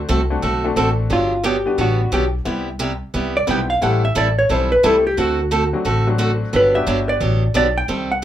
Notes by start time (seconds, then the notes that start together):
0.09 C2 D3 A3 C4 F#4 A4
0.30 A3 C4 D4 F#4 A4
0.42 B1 D3 A3 C4 F#4 A4
0.64 A3 C4 D4 F#4 A4
0.76 A1 D3 A3 C4 F#4 A4
1.10 G1 D3 F#3 B3 D4 F4 G4
1.43 D3 F#3 B3 D4 G4
1.66 G3 B3 D4 F#4 B4
1.78 A1 D3 F#3 B3 D4 F#4 G4
2.12 B1 D3 F#3 B3 D4 G4
2.45 C2 C3 G3 B3 C4 E4 G4
2.79 C3 G3 B3 E4 G4
3.14 C2 C3 G3 B3 E4 G4
3.37 D5
3.47 B1 C3 G3 B3 C4 E4 G4
3.51 G5
3.70 F5
3.81 A1 E3 G3 A3 C4 E4 G4 A4 F#5
4.05 E5
4.15 A1 E3 G3 C4 E4 A4 D5
4.39 C#5
4.49 B1 E3 G3 C4 E4 A4 C5
4.72 B4
4.83 C2 E3 G3 A3 C4 E4 G4 A4
5.07 G4
5.17 D2 D3 A3 C4 F#4 A4
5.51 D3 A3 C4 F#4 A4
5.73 F#3 A3 C4 D4 F#4
5.85 A1 D3 A3 C4 F#4 A4
6.07 F#3 A3 C4 D4 F#4
6.18 D3 A3 C4 F#4 A4
6.53 G1 D3 F#3 B3 D4 G4 B4
6.74 G3 B3 D4 F#4 G4 E5
6.87 G1 D3 F#3 B3 D4 G4
7.09 D5
7.20 A1 D3 F#3 B3 D4 G4
7.54 B1 D3 F#3 B3 D4 G4 D5
7.78 G5
7.88 C2 C3 D#3 G3 C4 G4 A4
8.12 F#5